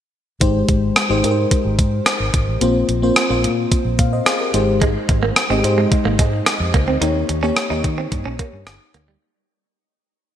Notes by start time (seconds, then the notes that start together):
0.40 G#1 G#3 D#4 G4 C5, kick, closed hi-hat
0.69 G#1, kick, closed hi-hat
0.96 cross-stick, closed hi-hat
1.09 G#1 G#3 D#4 G4 C5
1.23 G#2 G#3 D#4 G4 A#4, closed hi-hat
1.31 C5
1.51 kick, closed hi-hat
1.65 G#1
1.79 G#2, kick, closed hi-hat
2.06 cross-stick, closed hi-hat
2.20 G#1
2.34 G#1, kick, closed hi-hat
2.47 A1
2.61 A#1 A#3 C4 F4 C5, closed hi-hat
2.89 A#1, closed hi-hat
3.02 A#3 C4 F4 C5
3.16 cross-stick, closed hi-hat
3.30 A#1 A#3 C4 F4 C5
3.44 A#2, closed hi-hat
3.72 kick, closed hi-hat
3.85 A#1
3.99 A#2 F5, kick, closed hi-hat
4.13 C5 D#5
4.26 G#4 C5, cross-stick, closed hi-hat
4.40 G4 A#4
4.53 G#1 G#3 D#4 G4 C5, closed hi-hat
4.82 G#3, kick, closed hi-hat
5.09 G#1, muted clean electric guitar stroke, kick, closed hi-hat
5.23 A#3
5.36 cross-stick, closed hi-hat
5.50 G#1 G#3 C4 D#4 G4 D#5
5.64 G#2 G#3 D#4 G4 C5, muted clean electric guitar stroke, closed hi-hat
5.78 G#3
5.92 muted clean electric guitar stroke, kick, closed hi-hat
6.05 G#1 A#3
6.19 G#2 G#3, kick, closed hi-hat
6.46 muted clean electric guitar stroke, cross-stick, closed hi-hat
6.60 F2
6.74 C#2 A#3, kick, closed hi-hat
6.88 D2 C4
7.01 D#2 A#3 D#4 G4 C#5, closed hi-hat
7.29 D#2, muted clean electric guitar stroke, closed hi-hat
7.43 A#3 C#4 D#4 G4 C#5
7.56 cross-stick, closed hi-hat
7.70 D#2 A#3 D#4 G4 C#5
7.84 D#3, muted clean electric guitar stroke, kick, closed hi-hat
7.98 C4
8.12 G2, muted clean electric guitar stroke, kick, closed hi-hat
8.25 A#1 C#4
8.39 A#3, kick, closed hi-hat
8.53 G2
8.67 G1, muted clean electric guitar stroke, cross-stick, closed hi-hat
8.94 D2 A#3, closed hi-hat
9.08 G3